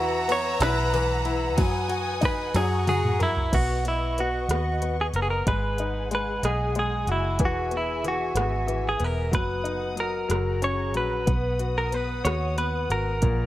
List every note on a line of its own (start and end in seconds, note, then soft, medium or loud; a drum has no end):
0.00 0.57 E2 loud
0.00 0.92 E3 medium
0.00 0.59 E4 medium
0.00 0.32 F#4 loud
0.00 2.52 B4 medium
0.00 3.50 F#5 medium
0.00 1.59 A#5 loud
0.00 1.57 E6 medium
0.28 1.54 B3 medium
0.28 0.62 C#5 loud
0.28 ride medium
0.60 1.58 B1 loud
0.60 1.24 E4 medium
0.60 2.24 B4 medium
0.60 snare loud
0.60 ride medium
0.94 1.56 E3 medium
0.94 ride soft
1.25 1.57 E4 medium
1.25 ride soft
1.57 2.51 F#2 loud
1.57 2.52 F#3 medium
1.57 2.56 G#5 loud
1.57 2.54 D#6 medium
1.57 kick loud
1.57 ride medium
1.88 2.52 F#4 medium
1.88 ride soft
2.21 2.53 D#4 medium
2.21 kick medium
2.21 ride soft
2.25 2.54 B4 loud
2.54 3.48 F#2 loud
2.54 3.49 F#3 medium
2.54 2.86 G#4 medium
2.54 3.21 F#5 medium
2.54 3.52 A#5 medium
2.54 3.52 C#6 medium
2.54 snare medium
2.54 ride medium
2.87 3.51 F#4 medium
2.87 3.22 G#4 medium
2.87 high tom medium
2.87 ride medium
3.04 mid tom medium
3.20 3.55 E4 medium
3.20 3.51 A#4 medium
3.20 mid tom loud
3.20 ride soft
3.37 floor tom loud
3.52 4.46 B1 medium
3.52 3.84 B3 medium
3.52 3.84 F#4 medium
3.52 5.45 B4 medium
3.52 5.45 D#5 medium
3.52 5.45 C#6 medium
3.52 kick medium
3.52 closed hi-hat medium
3.52 crash medium
3.85 4.17 B3 soft
3.85 4.20 E4 medium
3.85 closed hi-hat soft
4.18 4.49 B3 soft
4.18 4.96 F#4 medium
4.18 closed hi-hat medium
4.49 5.10 D#2 medium
4.49 4.81 B3 medium
4.49 cross-stick medium
4.49 closed hi-hat medium
4.82 5.14 B3 soft
4.82 closed hi-hat medium
5.01 5.06 G#4 medium
5.13 5.44 F#1 medium
5.13 5.46 B3 soft
5.13 5.22 A#4 medium
5.13 closed hi-hat soft
5.22 5.29 G#4 medium
5.30 5.47 A#4 medium
5.45 6.39 G#1 medium
5.45 6.10 G#3 medium
5.45 9.29 G#4 medium
5.45 6.08 B4 medium
5.45 7.37 F#5 medium
5.45 9.29 G#5 medium
5.45 kick loud
5.45 closed hi-hat medium
5.78 7.04 D#4 soft
5.78 closed hi-hat soft
6.11 6.74 G#3 soft
6.11 6.45 B4 medium
6.11 closed hi-hat medium
6.43 7.04 B1 medium
6.43 6.74 G#4 medium
6.43 7.37 D#5 medium
6.43 cross-stick medium
6.43 closed hi-hat medium
6.75 7.38 G#3 soft
6.75 7.10 G#4 medium
6.75 closed hi-hat soft
7.07 7.39 F#1 medium
7.07 7.39 F#4 medium
7.07 closed hi-hat soft
7.12 7.40 E4 medium
7.39 8.32 E1 loud
7.39 8.03 E3 medium
7.39 9.32 E5 medium
7.39 kick loud
7.39 closed hi-hat medium
7.45 7.76 F#4 medium
7.71 8.34 B3 soft
7.71 closed hi-hat soft
7.77 8.05 E4 medium
8.04 8.66 E3 medium
8.04 8.89 F#4 medium
8.04 closed hi-hat medium
8.35 8.96 G#1 medium
8.35 8.98 B3 medium
8.35 cross-stick medium
8.35 closed hi-hat medium
8.67 9.30 E3 soft
8.67 closed hi-hat medium
8.89 9.04 G#4 medium
9.00 9.33 E1 medium
9.00 9.32 B3 medium
9.00 closed hi-hat soft
9.04 9.34 A#4 medium
9.31 10.26 F#1 loud
9.31 9.94 F#3 medium
9.31 10.30 B3 medium
9.31 9.95 B4 loud
9.31 10.29 F#5 medium
9.31 10.30 D#6 medium
9.31 kick medium
9.31 closed hi-hat medium
9.64 10.27 D#4 soft
9.64 closed hi-hat soft
9.96 10.27 F#3 soft
9.96 closed hi-hat soft
10.00 10.64 A#4 medium
10.29 10.95 F#1 medium
10.29 10.93 F#3 medium
10.29 11.27 G#4 medium
10.29 13.46 F#5 medium
10.29 11.26 A#5 medium
10.29 cross-stick medium
10.29 closed hi-hat medium
10.62 11.25 C#4 soft
10.62 10.97 C#5 medium
10.62 closed hi-hat medium
10.94 11.26 A#1 medium
10.94 11.27 F#3 soft
10.94 11.77 B4 medium
10.94 closed hi-hat soft
11.26 12.21 B1 medium
11.26 13.20 B3 medium
11.26 11.91 B3 medium
11.26 13.20 D#6 medium
11.26 kick loud
11.26 closed hi-hat medium
11.59 12.23 F#4 soft
11.59 closed hi-hat soft
11.78 11.94 A#4 medium
11.92 12.56 B3 soft
11.92 12.24 B4 medium
11.92 closed hi-hat soft
12.25 12.86 D#2 medium
12.25 12.89 F#4 medium
12.25 12.58 C#5 medium
12.25 cross-stick loud
12.25 closed hi-hat medium
12.58 13.21 B3 soft
12.58 12.91 B4 medium
12.58 closed hi-hat medium
12.90 13.20 G#1 medium
12.90 13.22 F#4 soft
12.90 13.46 A#4 medium
12.90 closed hi-hat soft
13.22 13.46 A#1 loud
13.22 13.46 A#2 medium
13.22 13.46 G#4 medium
13.22 13.46 A#5 medium
13.22 kick loud
13.22 closed hi-hat medium